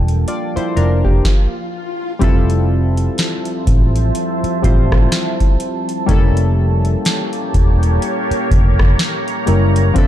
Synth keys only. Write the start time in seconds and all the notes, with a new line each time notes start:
Already playing: G3 A#3 D4 F4 A4
0.28 F4 D5
0.56 E4 C5
0.77 D4 A#4
1.05 A#3 G4
2.19 G3 C4 E4 F4
2.24 A4
4.62 G3 C4 E4 F4 C5
6.06 G3 A#3 C#4 E4
6.11 A4
9.46 G3 A#3 C#4 E4 A#4
9.94 F3 C4 D4 E4
9.98 A4